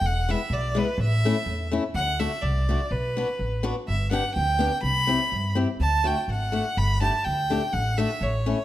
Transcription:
<<
  \new Staff \with { instrumentName = "Fiddle" } { \time 2/4 \key d \major \tempo 4 = 125 fis''8 e''8 d''8 b'8 | e''4. r8 | fis''8 e''8 d''4 | b'4. r8 |
e''8 fis''8 g''4 | b''4. r8 | a''8 g''8 fis''4 | b''8 a''8 g''4 |
fis''8 e''8 cis''4 | }
  \new Staff \with { instrumentName = "Steel-string acoustic guitar" } { \time 2/4 \key d \major r8 <gis b e'>8 r8 <gis b e'>8 | r8 <a cis' e'>8 r8 <a cis' e'>8 | r8 <a d' fis'>8 r8 <a d' fis'>8 | r8 <b d' fis'>8 r8 <b d' fis'>8 |
r8 <b d' g'>8 r8 <b d' g'>8 | r8 <c' e' g'>8 r8 <c' e' g'>8 | r8 <a d' fis'>8 r8 <a d' fis'>8 | r8 <a d' g'>8 r8 <a d' g'>8 |
r8 <a d' fis'>8 r8 <a cis' e'>8 | }
  \new Staff \with { instrumentName = "Upright bass" } { \clef bass \time 2/4 \key d \major e,,4 b,,4 | a,,4 e,4 | d,4 c,4 | b,,4 a,,4 |
g,,4 d,4 | c,4 g,4 | d,4 gis,,4 | g,,4 d,4 |
a,,4 a,,4 | }
>>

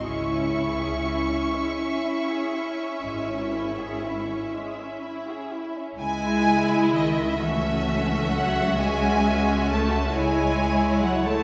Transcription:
<<
  \new Staff \with { instrumentName = "Violin section" } { \time 12/8 \key cis \minor \tempo 4. = 42 cis'''1~ cis'''8 r4. | gis''4 dis''8 e''4 fis''8 gis''4 a''8 gis''4 fis''16 a''16 | }
  \new Staff \with { instrumentName = "Violin section" } { \time 12/8 \key cis \minor << { e''1. | e''1~ e''8 cis''4. | } \\ { gis16 cis'16 e'16 gis'16 e'16 cis'16 gis16 cis'16 e'16 gis'16 e'16 cis'16 gis16 cis'16 e'16 gis'16 e'16 cis'16 gis16 cis'16 e'16 gis'16 e'16 cis'16 | e'4. fis'2. e'4. | } >> }
  \new Staff \with { instrumentName = "Viola section" } { \time 12/8 \key cis \minor <cis' e'>1. | <gis e'>4. <a cis'>4. <gis cis'>4. <gis e'>4. | }
  \new Staff \with { instrumentName = "Cello section" } { \clef bass \time 12/8 \key cis \minor cis4. r4. gis,4. r4. | gis4 dis8 e4 fis8 gis4 a8 gis4 fis16 a16 | }
  \new Staff \with { instrumentName = "Double bass section" } { \clef bass \time 12/8 \key cis \minor cis,4. r4. gis,,4. r4. | cis,1. | }
>>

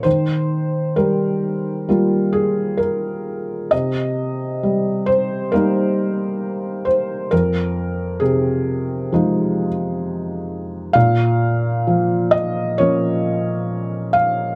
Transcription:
<<
  \new Staff \with { instrumentName = "Felt piano" } { \time 4/4 \key bes \dorian \tempo 4 = 66 c''4 bes'4 r8 aes'8 bes'4 | ees''4. c''8 bes'4. c''8 | bes'4 aes'4 r2 | f''4. ees''8 des''4. f''8 | }
  \new Staff \with { instrumentName = "Felt piano" } { \clef bass \time 4/4 \key bes \dorian ees4 g4 <g bes f'>2 | c4 g4 <g bes ees'>2 | f,4 c4 <f aes ees'>2 | bes,4 f4 <f bes des'>2 | }
>>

